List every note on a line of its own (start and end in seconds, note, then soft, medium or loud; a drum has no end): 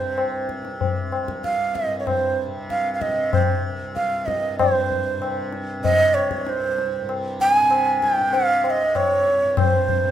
0.00 1.23 C2 medium
0.00 1.85 G2 medium
0.00 0.62 C3 medium
0.00 0.49 C5 medium
0.18 tabla na medium
0.49 tabla ke medium
0.62 2.46 C3 medium
0.62 tabla te medium
0.81 tabla tin medium
0.81 tabla ge medium
1.12 tabla na medium
1.23 3.68 C2 medium
1.28 tabla ke medium
1.44 1.77 F5 medium
1.44 tabla ke medium
1.75 1.99 D#5 medium
1.75 tabla ke medium
1.86 4.28 G2 medium
2.00 2.08 C#5 soft
2.06 2.38 C5 medium
2.06 tabla na medium
2.06 tabla ge medium
2.46 3.07 C3 medium
2.70 2.93 F5 medium
2.70 tabla ke medium
2.94 3.03 F5 medium
3.01 3.33 D#5 medium
3.01 tabla ke medium
3.07 5.18 C3 medium
3.33 3.63 C5 medium
3.33 tabla na medium
3.33 tabla ge medium
3.68 6.40 C2 medium
3.96 4.27 F5 medium
3.96 tabla ke medium
4.26 4.57 G2 medium
4.26 4.58 D#5 medium
4.26 tabla ke medium
4.57 7.02 G2 medium
4.57 5.49 C5 medium
4.57 tabla na loud
4.57 tabla ge medium
4.91 tabla ge medium
5.18 5.80 C3 medium
5.18 tabla na medium
5.53 tabla te medium
5.80 7.62 C3 medium
5.80 6.16 D#5 loud
5.84 tabla tin medium
5.84 tabla ge medium
6.14 6.45 C#5 medium
6.14 tabla na medium
6.31 tabla ke medium
6.41 8.81 C2 medium
6.45 7.08 C5 medium
6.45 6.50 C#5 medium
6.45 tabla te medium
6.78 tabla te medium
7.02 9.42 G2 medium
7.09 tabla na medium
7.40 7.53 G5 loud
7.40 tabla ke medium
7.53 8.05 G#5 loud
7.62 8.21 C3 medium
7.71 tabla na medium
8.02 8.36 G5 medium
8.02 tabla ke medium
8.18 10.04 C3 medium
8.18 tabla te medium
8.33 8.65 F5 loud
8.33 tabla tin medium
8.64 8.71 F5 medium
8.64 tabla na medium
8.70 8.98 D#5 medium
8.82 10.11 C2 medium
8.95 9.60 C#5 medium
8.95 tabla na medium
8.95 tabla ge medium
9.27 tabla te medium
9.43 10.11 G2 medium
9.57 10.11 C5 medium
9.57 tabla na loud
9.57 tabla ge medium
9.89 tabla ge medium
10.04 10.11 C3 medium